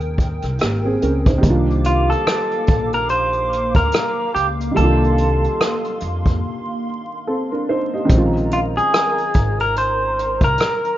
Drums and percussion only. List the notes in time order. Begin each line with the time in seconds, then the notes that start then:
0.00 closed hi-hat
0.18 kick, closed hi-hat
0.42 cross-stick, closed hi-hat
0.59 cross-stick, closed hi-hat
1.02 closed hi-hat
1.26 kick, closed hi-hat
1.43 kick, closed hi-hat
1.70 closed hi-hat
1.84 closed hi-hat
2.11 closed hi-hat
2.27 cross-stick, closed hi-hat
2.51 closed hi-hat
2.67 kick, closed hi-hat
2.93 closed hi-hat
3.09 closed hi-hat
3.33 closed hi-hat
3.53 closed hi-hat
3.75 kick, closed hi-hat
3.92 cross-stick, closed hi-hat
4.36 closed hi-hat
4.60 closed hi-hat
4.76 closed hi-hat
5.04 closed hi-hat
5.18 closed hi-hat
5.44 closed hi-hat
5.61 cross-stick, closed hi-hat
5.84 closed hi-hat
6.00 closed hi-hat
6.26 kick, closed hi-hat
8.09 kick, closed hi-hat
8.37 closed hi-hat
8.51 closed hi-hat
8.78 closed hi-hat
8.94 cross-stick, closed hi-hat
9.18 closed hi-hat
9.34 kick, closed hi-hat
9.60 closed hi-hat
9.76 closed hi-hat
10.19 closed hi-hat
10.41 kick, closed hi-hat
10.58 cross-stick, closed hi-hat
10.85 closed hi-hat